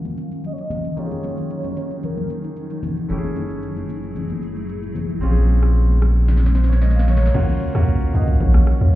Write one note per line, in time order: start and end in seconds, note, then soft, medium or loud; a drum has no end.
0.00 0.93 D#3 medium
0.00 3.06 D#3 medium
0.00 3.06 F#3 medium
0.00 0.93 A#3 medium
0.00 0.93 C#4 medium
0.00 3.06 C#4 medium
0.00 0.94 F4 medium
0.00 0.94 F#4 medium
0.00 0.95 F5 medium
0.05 high conga medium
0.05 shaker medium
0.18 shaker medium
0.32 shaker soft
0.44 0.54 D#5 loud
0.44 shaker medium
0.53 0.62 C#5 medium
0.58 1.00 D#5 loud
0.58 shaker medium
0.70 high conga medium
0.70 low conga medium
0.70 shaker loud
0.84 shaker soft
0.96 3.05 D#3 medium
0.96 3.06 A#3 medium
0.96 3.06 C#4 medium
0.96 3.08 D#4 medium
0.96 3.06 F4 medium
0.96 1.05 G4 medium
0.96 2.06 C#5 loud
0.96 low conga medium
0.96 shaker medium
1.06 3.10 G#4 medium
1.11 high conga medium
1.11 shaker soft
1.24 high conga medium
1.24 shaker loud
1.38 shaker soft
1.50 shaker medium
1.64 high conga medium
1.64 shaker medium
1.77 shaker medium
1.91 shaker soft
2.03 2.84 A#4 medium
2.03 low conga medium
2.03 shaker medium
2.17 high conga medium
2.17 shaker soft
2.30 shaker medium
2.44 shaker soft
2.56 shaker medium
2.70 shaker medium
2.83 high conga medium
2.83 low conga medium
2.83 shaker medium
2.97 shaker soft
3.08 5.18 F#1 medium
3.08 5.20 F#3 medium
3.08 5.17 A3 medium
3.08 5.20 A3 medium
3.08 5.18 C#4 medium
3.08 5.20 E4 medium
3.08 5.19 E4 medium
3.08 3.17 G4 medium
3.08 5.20 G#4 medium
3.08 low conga medium
3.08 shaker medium
3.18 5.22 G#4 medium
3.23 high conga medium
3.23 shaker soft
3.36 high conga medium
3.36 shaker loud
3.50 shaker soft
3.63 shaker medium
3.77 high conga medium
3.77 shaker medium
3.89 shaker medium
4.03 shaker soft
4.16 low conga medium
4.16 shaker medium
4.30 high conga medium
4.30 shaker soft
4.42 shaker medium
4.57 shaker soft
4.69 shaker medium
4.83 shaker medium
4.95 high conga medium
4.95 low conga medium
4.95 shaker loud
5.09 shaker soft
5.21 7.31 A#1 medium
5.21 7.32 C#3 medium
5.21 7.32 G#3 medium
5.21 7.32 A#3 medium
5.21 7.04 C4 medium
5.21 7.04 C#4 medium
5.21 7.05 F4 medium
5.21 5.30 G4 medium
5.21 low conga medium
5.21 shaker medium
5.31 7.09 G#4 medium
5.36 high conga medium
5.36 shaker soft
5.49 high conga medium
5.49 shaker medium
5.63 cross-stick medium
5.63 shaker soft
5.75 shaker medium
5.89 high conga medium
6.02 cross-stick medium
6.02 shaker medium
6.16 shaker soft
6.28 snare medium
6.28 low conga medium
6.28 shaker medium
6.37 snare soft
6.42 high conga medium
6.42 shaker soft
6.46 snare medium
6.55 6.68 C5 medium
6.55 snare medium
6.55 shaker medium
6.64 snare medium
6.69 6.81 C#5 medium
6.69 snare medium
6.69 shaker soft
6.82 6.95 D#5 medium
6.82 snare medium
6.82 shaker medium
6.90 snare medium
6.95 7.08 F5 medium
6.95 snare medium
6.95 shaker medium
7.08 7.21 C#5 medium
7.08 7.84 C#5 loud
7.08 snare medium
7.08 high conga medium
7.08 low conga medium
7.08 shaker medium
7.17 snare medium
7.22 7.47 A#4 medium
7.22 snare medium
7.22 shaker soft
7.34 7.71 D#2 loud
7.34 8.95 D#3 medium
7.34 8.95 F#3 medium
7.34 7.66 A#3 loud
7.34 7.67 C#4 medium
7.34 8.95 C#4 medium
7.34 7.67 F4 medium
7.34 7.67 F#4 loud
7.34 8.95 F5 medium
7.34 kick loud
7.34 crash loud
7.34 low conga medium
7.34 shaker medium
7.49 high conga medium
7.49 shaker medium
7.61 open hi-hat medium
7.61 high conga medium
7.61 shaker loud
7.74 8.11 D#2 loud
7.74 8.06 A#3 loud
7.74 8.07 C#4 medium
7.74 8.07 F4 medium
7.74 8.07 F#4 loud
7.74 cross-stick medium
7.74 shaker medium
7.88 kick loud
7.88 shaker medium
8.02 high conga medium
8.02 shaker medium
8.14 8.38 C#2 loud
8.14 8.95 A#3 medium
8.14 8.95 C#4 medium
8.14 8.95 F4 medium
8.14 8.95 F#4 medium
8.14 8.27 D#5 loud
8.14 open hi-hat medium
8.14 shaker loud
8.28 kick medium
8.28 shaker soft
8.40 8.77 A#1 loud
8.40 8.95 C#5 loud
8.40 kick loud
8.40 low conga medium
8.40 shaker medium
8.54 cross-stick loud
8.54 high conga medium
8.54 shaker medium
8.67 cross-stick medium
8.67 open hi-hat medium
8.67 shaker medium
8.81 8.93 C#2 medium
8.81 mid tom medium
8.81 shaker soft